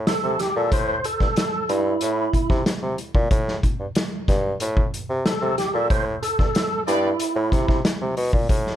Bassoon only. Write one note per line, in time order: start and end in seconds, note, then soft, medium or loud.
0.08 0.14 C3 soft
0.24 0.36 C3 medium
0.56 0.69 A#2 medium
0.72 0.97 A2 loud
1.21 1.27 G2 soft
1.69 1.95 G2 loud
2.02 2.27 A2 medium
2.50 2.63 C3 medium
2.66 2.73 C3 soft
2.82 2.95 C3 medium
3.15 3.27 A#2 medium
3.31 3.56 A2 loud
3.79 3.86 G2 medium
4.28 4.54 G2 medium
4.61 4.86 A2 loud
5.10 5.22 C3 medium
5.26 5.33 C3 soft
5.42 5.55 C3 medium
5.74 5.87 A#2 medium
5.90 6.16 A2 loud
6.39 6.46 G2 soft
6.87 7.13 G2 loud
7.36 7.49 A2 loud
7.52 7.65 C3 medium
7.68 7.81 C3 medium
8.01 8.14 C3 medium
8.17 8.30 B2 loud
8.33 8.46 A#2 medium
8.49 8.75 A2 loud